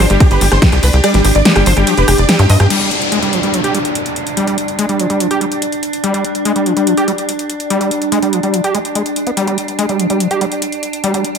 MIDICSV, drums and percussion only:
0, 0, Header, 1, 2, 480
1, 0, Start_track
1, 0, Tempo, 416667
1, 1195, Time_signature, 4, 2, 24, 8
1, 13112, End_track
2, 0, Start_track
2, 0, Title_t, "Drums"
2, 115, Note_on_c, 9, 42, 57
2, 230, Note_off_c, 9, 42, 0
2, 235, Note_on_c, 9, 36, 115
2, 235, Note_on_c, 9, 37, 40
2, 235, Note_on_c, 9, 42, 96
2, 235, Note_on_c, 9, 51, 68
2, 350, Note_off_c, 9, 36, 0
2, 350, Note_off_c, 9, 37, 0
2, 350, Note_off_c, 9, 42, 0
2, 350, Note_off_c, 9, 51, 0
2, 355, Note_on_c, 9, 42, 56
2, 470, Note_off_c, 9, 42, 0
2, 475, Note_on_c, 9, 46, 110
2, 590, Note_off_c, 9, 46, 0
2, 595, Note_on_c, 9, 37, 82
2, 595, Note_on_c, 9, 38, 34
2, 595, Note_on_c, 9, 42, 57
2, 710, Note_off_c, 9, 37, 0
2, 710, Note_off_c, 9, 38, 0
2, 710, Note_off_c, 9, 42, 0
2, 715, Note_on_c, 9, 36, 117
2, 715, Note_on_c, 9, 38, 119
2, 715, Note_on_c, 9, 42, 101
2, 715, Note_on_c, 9, 51, 75
2, 830, Note_off_c, 9, 36, 0
2, 830, Note_off_c, 9, 38, 0
2, 830, Note_off_c, 9, 42, 0
2, 830, Note_off_c, 9, 51, 0
2, 835, Note_on_c, 9, 37, 43
2, 835, Note_on_c, 9, 42, 58
2, 950, Note_off_c, 9, 37, 0
2, 950, Note_off_c, 9, 42, 0
2, 955, Note_on_c, 9, 46, 89
2, 1070, Note_off_c, 9, 46, 0
2, 1075, Note_on_c, 9, 42, 52
2, 1190, Note_off_c, 9, 42, 0
2, 1195, Note_on_c, 9, 37, 81
2, 1195, Note_on_c, 9, 42, 97
2, 1195, Note_on_c, 9, 51, 75
2, 1310, Note_off_c, 9, 37, 0
2, 1310, Note_off_c, 9, 42, 0
2, 1310, Note_off_c, 9, 51, 0
2, 1315, Note_on_c, 9, 38, 37
2, 1315, Note_on_c, 9, 42, 55
2, 1430, Note_off_c, 9, 38, 0
2, 1430, Note_off_c, 9, 42, 0
2, 1435, Note_on_c, 9, 37, 41
2, 1435, Note_on_c, 9, 46, 100
2, 1550, Note_off_c, 9, 37, 0
2, 1550, Note_off_c, 9, 46, 0
2, 1555, Note_on_c, 9, 42, 56
2, 1670, Note_off_c, 9, 42, 0
2, 1675, Note_on_c, 9, 38, 122
2, 1675, Note_on_c, 9, 42, 97
2, 1675, Note_on_c, 9, 51, 73
2, 1790, Note_off_c, 9, 38, 0
2, 1790, Note_off_c, 9, 42, 0
2, 1790, Note_off_c, 9, 51, 0
2, 1795, Note_on_c, 9, 37, 78
2, 1795, Note_on_c, 9, 42, 56
2, 1910, Note_off_c, 9, 37, 0
2, 1910, Note_off_c, 9, 42, 0
2, 1915, Note_on_c, 9, 46, 98
2, 2030, Note_off_c, 9, 46, 0
2, 2035, Note_on_c, 9, 37, 39
2, 2035, Note_on_c, 9, 42, 58
2, 2150, Note_off_c, 9, 37, 0
2, 2150, Note_off_c, 9, 42, 0
2, 2155, Note_on_c, 9, 42, 95
2, 2155, Note_on_c, 9, 51, 69
2, 2270, Note_off_c, 9, 42, 0
2, 2270, Note_off_c, 9, 51, 0
2, 2275, Note_on_c, 9, 42, 57
2, 2390, Note_off_c, 9, 42, 0
2, 2395, Note_on_c, 9, 37, 87
2, 2395, Note_on_c, 9, 46, 111
2, 2510, Note_off_c, 9, 37, 0
2, 2510, Note_off_c, 9, 46, 0
2, 2515, Note_on_c, 9, 42, 57
2, 2630, Note_off_c, 9, 42, 0
2, 2635, Note_on_c, 9, 37, 40
2, 2635, Note_on_c, 9, 38, 127
2, 2635, Note_on_c, 9, 42, 101
2, 2635, Note_on_c, 9, 51, 71
2, 2750, Note_off_c, 9, 37, 0
2, 2750, Note_off_c, 9, 38, 0
2, 2750, Note_off_c, 9, 42, 0
2, 2750, Note_off_c, 9, 51, 0
2, 2755, Note_on_c, 9, 42, 56
2, 2870, Note_off_c, 9, 42, 0
2, 2875, Note_on_c, 9, 46, 96
2, 2990, Note_off_c, 9, 46, 0
2, 2995, Note_on_c, 9, 37, 77
2, 2995, Note_on_c, 9, 42, 57
2, 3110, Note_off_c, 9, 37, 0
2, 3110, Note_off_c, 9, 42, 0
2, 3115, Note_on_c, 9, 42, 96
2, 3115, Note_on_c, 9, 49, 87
2, 3230, Note_off_c, 9, 42, 0
2, 3230, Note_off_c, 9, 49, 0
2, 3235, Note_on_c, 9, 42, 52
2, 3350, Note_off_c, 9, 42, 0
2, 3355, Note_on_c, 9, 42, 66
2, 3470, Note_off_c, 9, 42, 0
2, 3475, Note_on_c, 9, 42, 53
2, 3590, Note_off_c, 9, 42, 0
2, 3594, Note_on_c, 9, 42, 91
2, 3710, Note_off_c, 9, 42, 0
2, 3715, Note_on_c, 9, 42, 53
2, 3830, Note_off_c, 9, 42, 0
2, 3835, Note_on_c, 9, 42, 71
2, 3950, Note_off_c, 9, 42, 0
2, 3955, Note_on_c, 9, 42, 55
2, 4070, Note_off_c, 9, 42, 0
2, 4075, Note_on_c, 9, 42, 90
2, 4190, Note_off_c, 9, 42, 0
2, 4195, Note_on_c, 9, 42, 52
2, 4310, Note_off_c, 9, 42, 0
2, 4314, Note_on_c, 9, 42, 73
2, 4430, Note_off_c, 9, 42, 0
2, 4435, Note_on_c, 9, 42, 54
2, 4550, Note_off_c, 9, 42, 0
2, 4554, Note_on_c, 9, 42, 97
2, 4670, Note_off_c, 9, 42, 0
2, 4675, Note_on_c, 9, 42, 55
2, 4790, Note_off_c, 9, 42, 0
2, 4795, Note_on_c, 9, 42, 67
2, 4910, Note_off_c, 9, 42, 0
2, 4915, Note_on_c, 9, 42, 49
2, 5030, Note_off_c, 9, 42, 0
2, 5035, Note_on_c, 9, 42, 94
2, 5150, Note_off_c, 9, 42, 0
2, 5155, Note_on_c, 9, 42, 51
2, 5270, Note_off_c, 9, 42, 0
2, 5274, Note_on_c, 9, 42, 63
2, 5390, Note_off_c, 9, 42, 0
2, 5394, Note_on_c, 9, 42, 49
2, 5510, Note_off_c, 9, 42, 0
2, 5515, Note_on_c, 9, 42, 93
2, 5630, Note_off_c, 9, 42, 0
2, 5634, Note_on_c, 9, 42, 51
2, 5750, Note_off_c, 9, 42, 0
2, 5754, Note_on_c, 9, 42, 69
2, 5870, Note_off_c, 9, 42, 0
2, 5875, Note_on_c, 9, 42, 52
2, 5990, Note_off_c, 9, 42, 0
2, 5995, Note_on_c, 9, 42, 88
2, 6110, Note_off_c, 9, 42, 0
2, 6115, Note_on_c, 9, 42, 51
2, 6230, Note_off_c, 9, 42, 0
2, 6235, Note_on_c, 9, 42, 66
2, 6350, Note_off_c, 9, 42, 0
2, 6354, Note_on_c, 9, 42, 50
2, 6470, Note_off_c, 9, 42, 0
2, 6474, Note_on_c, 9, 42, 93
2, 6590, Note_off_c, 9, 42, 0
2, 6595, Note_on_c, 9, 42, 52
2, 6710, Note_off_c, 9, 42, 0
2, 6714, Note_on_c, 9, 42, 66
2, 6830, Note_off_c, 9, 42, 0
2, 6835, Note_on_c, 9, 42, 51
2, 6950, Note_off_c, 9, 42, 0
2, 6955, Note_on_c, 9, 42, 91
2, 7070, Note_off_c, 9, 42, 0
2, 7074, Note_on_c, 9, 42, 49
2, 7190, Note_off_c, 9, 42, 0
2, 7195, Note_on_c, 9, 42, 63
2, 7310, Note_off_c, 9, 42, 0
2, 7314, Note_on_c, 9, 42, 48
2, 7430, Note_off_c, 9, 42, 0
2, 7434, Note_on_c, 9, 42, 88
2, 7550, Note_off_c, 9, 42, 0
2, 7554, Note_on_c, 9, 42, 46
2, 7670, Note_off_c, 9, 42, 0
2, 7674, Note_on_c, 9, 42, 64
2, 7790, Note_off_c, 9, 42, 0
2, 7795, Note_on_c, 9, 42, 49
2, 7910, Note_off_c, 9, 42, 0
2, 7914, Note_on_c, 9, 42, 84
2, 8030, Note_off_c, 9, 42, 0
2, 8034, Note_on_c, 9, 42, 48
2, 8150, Note_off_c, 9, 42, 0
2, 8154, Note_on_c, 9, 42, 63
2, 8270, Note_off_c, 9, 42, 0
2, 8274, Note_on_c, 9, 42, 45
2, 8390, Note_off_c, 9, 42, 0
2, 8394, Note_on_c, 9, 42, 92
2, 8510, Note_off_c, 9, 42, 0
2, 8515, Note_on_c, 9, 42, 51
2, 8630, Note_off_c, 9, 42, 0
2, 8635, Note_on_c, 9, 42, 64
2, 8750, Note_off_c, 9, 42, 0
2, 8755, Note_on_c, 9, 42, 51
2, 8870, Note_off_c, 9, 42, 0
2, 8875, Note_on_c, 9, 42, 87
2, 8990, Note_off_c, 9, 42, 0
2, 8995, Note_on_c, 9, 42, 48
2, 9110, Note_off_c, 9, 42, 0
2, 9115, Note_on_c, 9, 42, 61
2, 9230, Note_off_c, 9, 42, 0
2, 9235, Note_on_c, 9, 42, 49
2, 9350, Note_off_c, 9, 42, 0
2, 9355, Note_on_c, 9, 42, 86
2, 9470, Note_off_c, 9, 42, 0
2, 9475, Note_on_c, 9, 42, 46
2, 9590, Note_off_c, 9, 42, 0
2, 9595, Note_on_c, 9, 42, 62
2, 9710, Note_off_c, 9, 42, 0
2, 9715, Note_on_c, 9, 42, 50
2, 9830, Note_off_c, 9, 42, 0
2, 9835, Note_on_c, 9, 42, 80
2, 9950, Note_off_c, 9, 42, 0
2, 9955, Note_on_c, 9, 42, 48
2, 10070, Note_off_c, 9, 42, 0
2, 10075, Note_on_c, 9, 42, 62
2, 10190, Note_off_c, 9, 42, 0
2, 10195, Note_on_c, 9, 42, 47
2, 10310, Note_off_c, 9, 42, 0
2, 10315, Note_on_c, 9, 42, 87
2, 10430, Note_off_c, 9, 42, 0
2, 10435, Note_on_c, 9, 42, 53
2, 10550, Note_off_c, 9, 42, 0
2, 10555, Note_on_c, 9, 42, 59
2, 10670, Note_off_c, 9, 42, 0
2, 10675, Note_on_c, 9, 42, 48
2, 10790, Note_off_c, 9, 42, 0
2, 10795, Note_on_c, 9, 42, 88
2, 10910, Note_off_c, 9, 42, 0
2, 10915, Note_on_c, 9, 42, 50
2, 11030, Note_off_c, 9, 42, 0
2, 11035, Note_on_c, 9, 42, 61
2, 11150, Note_off_c, 9, 42, 0
2, 11155, Note_on_c, 9, 42, 48
2, 11270, Note_off_c, 9, 42, 0
2, 11274, Note_on_c, 9, 42, 86
2, 11390, Note_off_c, 9, 42, 0
2, 11395, Note_on_c, 9, 42, 49
2, 11510, Note_off_c, 9, 42, 0
2, 11514, Note_on_c, 9, 42, 66
2, 11630, Note_off_c, 9, 42, 0
2, 11635, Note_on_c, 9, 42, 50
2, 11750, Note_off_c, 9, 42, 0
2, 11755, Note_on_c, 9, 42, 84
2, 11870, Note_off_c, 9, 42, 0
2, 11875, Note_on_c, 9, 42, 46
2, 11990, Note_off_c, 9, 42, 0
2, 11995, Note_on_c, 9, 42, 63
2, 12110, Note_off_c, 9, 42, 0
2, 12115, Note_on_c, 9, 42, 45
2, 12230, Note_off_c, 9, 42, 0
2, 12234, Note_on_c, 9, 42, 91
2, 12350, Note_off_c, 9, 42, 0
2, 12354, Note_on_c, 9, 42, 51
2, 12470, Note_off_c, 9, 42, 0
2, 12475, Note_on_c, 9, 42, 64
2, 12590, Note_off_c, 9, 42, 0
2, 12595, Note_on_c, 9, 42, 47
2, 12710, Note_off_c, 9, 42, 0
2, 12714, Note_on_c, 9, 42, 91
2, 12830, Note_off_c, 9, 42, 0
2, 12835, Note_on_c, 9, 42, 51
2, 12950, Note_off_c, 9, 42, 0
2, 12955, Note_on_c, 9, 42, 61
2, 13070, Note_off_c, 9, 42, 0
2, 13074, Note_on_c, 9, 42, 50
2, 13112, Note_off_c, 9, 42, 0
2, 13112, End_track
0, 0, End_of_file